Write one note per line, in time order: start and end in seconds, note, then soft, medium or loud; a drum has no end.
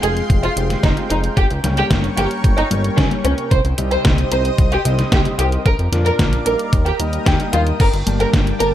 0.00 0.22 F1 medium
0.00 1.35 G#3 medium
0.00 0.37 G#3 medium
0.00 0.37 C4 medium
0.00 0.37 F4 medium
0.00 0.11 G#4 loud
0.00 1.33 F5 medium
0.00 5.62 G5 medium
0.00 0.37 G5 medium
0.00 1.35 C6 medium
0.00 closed hi-hat medium
0.17 closed hi-hat soft
0.30 0.49 F1 medium
0.30 kick loud
0.30 closed hi-hat medium
0.43 0.51 F4 loud
0.43 closed hi-hat soft
0.57 0.76 F1 loud
0.57 0.94 G#3 medium
0.57 0.94 C4 medium
0.57 0.94 F4 medium
0.57 0.94 G4 loud
0.57 closed hi-hat medium
0.70 snare soft
0.70 closed hi-hat soft
0.83 0.93 F1 loud
0.83 0.91 D#4 medium
0.83 kick loud
0.83 snare loud
0.83 closed hi-hat medium
0.97 1.08 G#3 medium
0.97 1.08 C4 medium
0.97 1.08 F4 medium
0.97 1.08 G4 loud
0.97 closed hi-hat soft
1.10 1.29 F1 loud
1.10 1.32 G#3 medium
1.10 1.32 C4 medium
1.10 1.18 D#4 medium
1.10 1.32 F4 medium
1.10 1.32 G#4 medium
1.10 closed hi-hat medium
1.24 closed hi-hat soft
1.37 1.46 G1 loud
1.37 1.45 G4 loud
1.37 3.49 A#4 medium
1.37 3.49 C#5 medium
1.37 3.49 C#6 medium
1.37 kick loud
1.37 closed hi-hat medium
1.51 1.60 C#2 loud
1.51 closed hi-hat soft
1.64 1.83 C#2 medium
1.64 2.14 G2 medium
1.64 2.14 G3 medium
1.64 2.14 A#3 medium
1.64 2.14 C#4 medium
1.64 2.14 G4 loud
1.64 snare soft
1.64 closed hi-hat medium
1.77 1.85 G4 loud
1.77 closed hi-hat soft
1.91 2.09 G1 loud
1.91 kick loud
1.91 snare loud
1.91 closed hi-hat medium
2.04 closed hi-hat soft
2.17 2.27 G1 loud
2.17 2.52 G2 medium
2.17 2.52 G3 medium
2.17 2.51 A#3 medium
2.17 2.51 C#4 medium
2.17 2.51 G4 medium
2.17 2.25 G4 loud
2.17 closed hi-hat medium
2.31 closed hi-hat soft
2.44 2.63 G1 loud
2.44 kick loud
2.44 closed hi-hat medium
2.57 2.65 D#4 loud
2.57 closed hi-hat soft
2.71 2.90 G1 medium
2.71 3.08 G2 medium
2.71 3.08 G3 medium
2.71 3.08 A#3 medium
2.71 3.08 C#4 medium
2.71 3.08 G4 loud
2.71 closed hi-hat medium
2.84 closed hi-hat soft
2.98 3.07 C#2 medium
2.98 3.06 C#4 medium
2.98 kick loud
2.98 snare loud
2.98 closed hi-hat medium
3.11 3.22 G2 medium
3.11 3.22 G3 medium
3.11 3.22 A#3 medium
3.11 3.22 C#4 medium
3.11 3.22 G4 loud
3.11 closed hi-hat soft
3.24 3.34 C#2 medium
3.24 3.46 C3 medium
3.24 3.46 G3 medium
3.24 3.46 A#3 medium
3.24 3.32 C#4 medium
3.24 3.46 C#4 medium
3.24 3.46 A#4 medium
3.24 closed hi-hat medium
3.38 closed hi-hat soft
3.51 3.61 C2 loud
3.51 3.59 C5 medium
3.51 5.64 C5 medium
3.51 5.63 D#5 medium
3.51 5.63 D#6 medium
3.51 kick loud
3.51 closed hi-hat medium
3.65 3.74 C2 medium
3.65 closed hi-hat soft
3.78 3.97 C2 medium
3.78 4.28 C3 loud
3.78 4.28 G3 medium
3.78 4.28 C4 medium
3.78 4.28 D#4 medium
3.78 4.28 G4 loud
3.78 closed hi-hat medium
3.91 4.00 C5 loud
3.91 closed hi-hat soft
4.05 4.24 C2 loud
4.05 kick loud
4.05 snare loud
4.05 closed hi-hat medium
4.18 closed hi-hat soft
4.32 4.50 C2 medium
4.32 4.66 C3 medium
4.32 4.66 G3 medium
4.32 4.66 C4 medium
4.32 4.66 D#4 medium
4.32 4.66 G4 medium
4.32 4.40 C5 loud
4.32 closed hi-hat loud
4.45 closed hi-hat soft
4.58 4.77 C2 medium
4.58 kick loud
4.58 closed hi-hat medium
4.72 4.80 G4 medium
4.72 closed hi-hat soft
4.85 5.04 C2 loud
4.85 5.22 C3 medium
4.85 5.22 G3 medium
4.85 5.22 C4 medium
4.85 5.22 D#4 medium
4.85 5.22 G4 loud
4.85 closed hi-hat medium
4.99 snare soft
4.99 closed hi-hat soft
5.12 5.21 C2 loud
5.12 5.20 G4 medium
5.12 kick loud
5.12 snare loud
5.12 closed hi-hat medium
5.25 5.37 C3 medium
5.25 5.37 G3 medium
5.25 5.37 C4 medium
5.25 5.37 D#4 medium
5.25 5.37 G4 loud
5.25 closed hi-hat soft
5.39 5.58 C2 loud
5.39 5.60 G3 medium
5.39 5.60 C4 medium
5.39 5.60 D#4 medium
5.39 5.47 G4 medium
5.39 5.60 A#4 medium
5.39 closed hi-hat medium
5.52 closed hi-hat soft
5.66 5.75 A#1 loud
5.66 7.78 A#4 medium
5.66 5.74 A#4 loud
5.66 6.72 D5 medium
5.66 6.72 F5 medium
5.66 6.72 D6 medium
5.66 kick loud
5.66 closed hi-hat medium
5.79 5.88 F2 medium
5.79 closed hi-hat soft
5.92 6.11 F2 medium
5.92 6.43 A#2 loud
5.92 6.43 A#3 medium
5.92 6.43 D4 medium
5.92 6.43 F4 medium
5.92 6.43 A#4 loud
5.92 snare soft
5.92 closed hi-hat loud
6.06 6.14 A#4 loud
6.06 closed hi-hat soft
6.19 6.38 A#1 loud
6.19 kick loud
6.19 snare loud
6.19 closed hi-hat medium
6.33 closed hi-hat soft
6.46 6.55 A#1 loud
6.46 6.80 G3 medium
6.46 6.80 A#3 medium
6.46 6.80 D#4 medium
6.46 6.80 G4 medium
6.46 6.54 A#4 loud
6.46 closed hi-hat loud
6.59 closed hi-hat soft
6.73 6.92 D#2 loud
6.73 7.79 D#5 medium
6.73 7.79 G5 medium
6.73 7.79 D#6 medium
6.73 kick loud
6.73 closed hi-hat medium
6.86 6.94 G4 medium
6.86 closed hi-hat soft
6.99 7.18 D#2 medium
6.99 7.36 G3 medium
6.99 7.36 A#3 medium
6.99 7.36 D#4 medium
6.99 7.36 G4 medium
6.99 closed hi-hat loud
7.13 closed hi-hat soft
7.26 7.36 D#2 loud
7.26 7.34 G4 medium
7.26 kick loud
7.26 snare loud
7.26 closed hi-hat medium
7.40 7.51 G3 medium
7.40 7.51 A#3 medium
7.40 7.51 D#4 medium
7.40 7.51 G4 loud
7.40 closed hi-hat soft
7.53 7.72 D#2 loud
7.53 7.74 G2 medium
7.53 7.74 G3 medium
7.53 7.74 A#3 medium
7.53 7.74 D#4 medium
7.53 7.61 F4 medium
7.53 7.74 A#4 medium
7.53 closed hi-hat medium
7.67 closed hi-hat soft
7.80 7.89 G1 loud
7.80 8.74 A#3 medium
7.80 7.88 A#4 loud
7.80 8.74 G5 medium
7.80 8.74 A5 medium
7.80 8.74 D6 medium
7.80 kick loud
7.80 closed hi-hat medium
7.80 crash loud
7.93 8.03 G1 medium
7.93 closed hi-hat soft
8.07 8.26 G1 medium
8.07 8.57 G2 loud
8.07 8.57 A#3 medium
8.07 8.57 D4 medium
8.07 8.57 G4 medium
8.07 8.57 A5 loud
8.07 closed hi-hat loud
8.20 8.28 A#4 medium
8.20 closed hi-hat soft
8.33 8.52 G1 loud
8.33 kick loud
8.33 snare loud
8.33 closed hi-hat medium
8.47 closed hi-hat soft
8.60 8.74 G1 medium
8.60 8.74 G2 medium
8.60 8.74 A#3 medium
8.60 8.74 D4 medium
8.60 8.74 G4 medium
8.60 8.68 A#4 loud
8.60 8.74 A5 medium
8.60 closed hi-hat loud